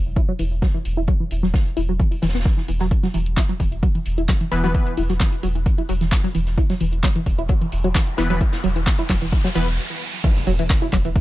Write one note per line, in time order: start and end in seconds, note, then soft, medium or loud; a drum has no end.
0.06 0.16 E1 medium
0.16 0.21 E4 medium
0.16 kick loud
0.16 closed hi-hat medium
0.29 0.32 F#3 loud
0.39 0.51 E1 loud
0.39 0.44 E3 medium
0.39 closed hi-hat medium
0.39 open hi-hat loud
0.52 0.62 E1 medium
0.62 0.67 F#3 loud
0.62 kick loud
0.62 snare loud
0.62 closed hi-hat medium
0.74 0.78 E3 medium
0.85 0.97 E1 medium
0.85 closed hi-hat medium
0.85 open hi-hat loud
0.97 1.08 E1 medium
0.97 1.01 E4 medium
1.07 1.12 F#3 loud
1.07 kick loud
1.07 closed hi-hat medium
1.20 1.24 E3 medium
1.31 1.42 E1 loud
1.31 closed hi-hat medium
1.31 open hi-hat loud
1.43 1.54 E1 medium
1.43 1.47 F#3 loud
1.43 snare soft
1.54 1.58 E3 medium
1.54 kick loud
1.54 snare loud
1.54 closed hi-hat medium
1.66 closed hi-hat soft
1.77 1.88 E1 loud
1.77 1.81 E4 medium
1.77 closed hi-hat medium
1.77 open hi-hat loud
1.89 1.99 E1 medium
1.89 1.93 F#3 medium
2.00 2.04 E3 medium
2.00 kick loud
2.00 closed hi-hat medium
2.12 open hi-hat medium
2.22 2.34 E1 loud
2.22 2.25 E3 loud
2.22 snare medium
2.22 closed hi-hat medium
2.22 open hi-hat loud
2.29 snare medium
2.29 closed hi-hat medium
2.34 2.45 E1 medium
2.34 2.37 B3 medium
2.34 snare medium
2.34 closed hi-hat medium
2.40 snare medium
2.40 closed hi-hat medium
2.45 kick loud
2.45 snare loud
2.45 closed hi-hat medium
2.58 2.61 E3 medium
2.58 snare soft
2.68 2.80 E1 loud
2.68 2.71 E3 medium
2.68 closed hi-hat medium
2.68 open hi-hat loud
2.79 2.91 E1 medium
2.79 2.86 F#3 loud
2.79 snare soft
2.91 kick loud
2.91 closed hi-hat medium
3.03 3.07 F#3 loud
3.03 snare soft
3.03 closed hi-hat medium
3.14 3.26 E1 loud
3.14 3.18 E3 medium
3.14 closed hi-hat medium
3.14 open hi-hat loud
3.26 3.37 E1 medium
3.26 closed hi-hat medium
3.37 3.41 E4 medium
3.37 kick loud
3.37 snare loud
3.37 clap loud
3.37 closed hi-hat medium
3.49 3.53 F#3 loud
3.49 closed hi-hat soft
3.60 3.72 E1 loud
3.60 3.64 E3 medium
3.60 kick medium
3.60 closed hi-hat medium
3.60 open hi-hat loud
3.72 3.83 E1 medium
3.72 closed hi-hat soft
3.83 3.87 F#3 loud
3.83 kick loud
3.83 closed hi-hat medium
3.95 3.99 E3 medium
3.95 closed hi-hat soft
4.05 4.17 E1 loud
4.05 closed hi-hat medium
4.05 open hi-hat loud
4.18 4.28 E1 medium
4.18 4.22 E4 medium
4.18 closed hi-hat soft
4.29 4.33 F#3 loud
4.29 kick loud
4.29 snare loud
4.29 clap loud
4.29 closed hi-hat medium
4.41 4.45 E3 medium
4.41 closed hi-hat medium
4.51 4.63 E1 loud
4.51 4.62 E3 medium
4.51 4.62 B3 medium
4.51 4.62 B4 loud
4.51 closed hi-hat medium
4.51 open hi-hat loud
4.64 4.74 E1 medium
4.64 4.73 E3 medium
4.64 4.67 F#3 loud
4.64 4.73 B3 medium
4.64 4.73 B4 loud
4.64 closed hi-hat soft
4.74 4.93 E3 medium
4.74 4.79 E3 medium
4.74 4.93 B3 medium
4.74 4.93 B4 medium
4.74 kick loud
4.74 closed hi-hat medium
4.87 closed hi-hat medium
4.97 5.09 E1 loud
4.97 5.02 E4 medium
4.97 closed hi-hat medium
4.97 open hi-hat medium
5.09 5.20 E1 medium
5.09 5.13 F#3 loud
5.09 snare soft
5.09 closed hi-hat medium
5.20 5.25 E3 medium
5.20 kick loud
5.20 snare loud
5.20 clap loud
5.20 closed hi-hat medium
5.32 closed hi-hat soft
5.43 5.55 E1 loud
5.43 5.47 F#3 loud
5.43 closed hi-hat medium
5.43 open hi-hat loud
5.55 5.66 E1 medium
5.55 5.59 E3 medium
5.55 closed hi-hat soft
5.66 kick loud
5.66 closed hi-hat medium
5.78 5.82 E4 medium
5.78 closed hi-hat soft
5.89 6.01 E1 loud
5.89 5.93 F#3 loud
5.89 closed hi-hat medium
5.89 open hi-hat loud
6.01 6.12 E1 medium
6.01 6.05 E3 medium
6.01 snare soft
6.01 closed hi-hat soft
6.12 kick loud
6.12 snare loud
6.12 clap loud
6.12 closed hi-hat medium
6.24 6.28 F#3 loud
6.24 snare soft
6.24 closed hi-hat soft
6.35 6.46 E1 loud
6.35 6.39 E3 medium
6.35 closed hi-hat medium
6.35 open hi-hat loud
6.47 6.57 E1 medium
6.47 snare soft
6.47 closed hi-hat soft
6.58 6.62 E4 medium
6.58 kick loud
6.58 closed hi-hat medium
6.58 riser medium
6.70 6.74 F#3 loud
6.70 snare soft
6.70 closed hi-hat medium
6.80 6.92 E1 loud
6.80 6.85 E3 medium
6.80 closed hi-hat medium
6.80 open hi-hat loud
6.93 7.03 E1 medium
6.93 closed hi-hat soft
7.03 7.08 F#3 loud
7.03 kick loud
7.03 snare loud
7.03 clap loud
7.03 closed hi-hat medium
7.15 7.19 E3 medium
7.15 closed hi-hat soft
7.15 closed hi-hat medium
7.26 7.38 E1 loud
7.26 kick medium
7.26 closed hi-hat medium
7.26 open hi-hat loud
7.38 7.49 E1 medium
7.38 7.42 E4 medium
7.38 closed hi-hat medium
7.48 7.54 F#3 loud
7.48 kick loud
7.48 closed hi-hat medium
7.61 7.65 E3 medium
7.61 closed hi-hat soft
7.72 7.84 E1 loud
7.72 closed hi-hat medium
7.72 open hi-hat loud
7.84 7.95 E1 medium
7.84 7.88 F#3 loud
7.84 closed hi-hat soft
7.95 7.99 E3 medium
7.95 kick loud
7.95 snare loud
7.95 clap loud
7.95 closed hi-hat medium
8.07 closed hi-hat medium
8.17 8.29 E1 loud
8.17 8.28 E3 loud
8.17 8.28 B3 medium
8.17 8.22 E4 medium
8.17 8.28 B4 loud
8.17 snare loud
8.17 closed hi-hat medium
8.17 open hi-hat loud
8.30 8.41 E1 medium
8.30 8.39 E3 medium
8.30 8.34 F#3 loud
8.30 8.39 B3 medium
8.30 8.39 B4 loud
8.30 closed hi-hat soft
8.30 closed hi-hat medium
8.41 8.45 E3 medium
8.41 kick loud
8.41 closed hi-hat medium
8.53 snare loud
8.53 closed hi-hat medium
8.63 8.75 E1 loud
8.63 8.68 F#3 loud
8.63 closed hi-hat soft
8.63 open hi-hat loud
8.76 8.87 E1 medium
8.76 8.80 E3 medium
8.76 closed hi-hat medium
8.86 kick loud
8.86 snare loud
8.86 clap loud
8.86 closed hi-hat medium
8.99 9.03 E4 medium
8.99 closed hi-hat medium
8.99 closed hi-hat soft
9.09 9.21 E1 loud
9.09 9.14 F#3 loud
9.09 kick medium
9.09 snare loud
9.09 clap medium
9.09 closed hi-hat medium
9.09 open hi-hat loud
9.21 9.32 E1 medium
9.21 9.26 E3 medium
9.21 closed hi-hat soft
9.21 closed hi-hat medium
9.32 kick loud
9.32 closed hi-hat medium
9.32 closed hi-hat loud
9.44 9.48 F#3 loud
9.44 snare loud
9.44 closed hi-hat medium
9.55 9.67 E1 loud
9.55 9.67 E3 medium
9.55 9.60 E3 medium
9.55 9.67 B3 medium
9.55 9.67 B4 loud
9.55 open hi-hat loud
9.67 9.78 E1 medium
9.67 closed hi-hat medium
9.67 closed hi-hat soft
10.24 10.28 E3 medium
10.24 kick loud
10.24 closed hi-hat loud
10.24 closed hi-hat medium
10.24 crash loud
10.24 impact medium
10.36 snare soft
10.36 closed hi-hat medium
10.47 10.59 E1 loud
10.47 10.51 F#3 loud
10.47 closed hi-hat medium
10.47 open hi-hat loud
10.59 10.70 E1 medium
10.59 10.63 E3 medium
10.59 closed hi-hat medium
10.70 kick loud
10.70 snare loud
10.70 clap loud
10.70 closed hi-hat medium
10.70 closed hi-hat loud
10.82 10.86 E4 medium
10.82 closed hi-hat medium
10.82 closed hi-hat soft
10.93 11.04 E1 loud
10.93 10.97 F#3 loud
10.93 kick medium
10.93 clap medium
10.93 closed hi-hat medium
10.93 open hi-hat loud
11.05 11.15 E1 medium
11.05 11.09 E3 medium
11.05 closed hi-hat medium
11.16 kick loud
11.16 closed hi-hat medium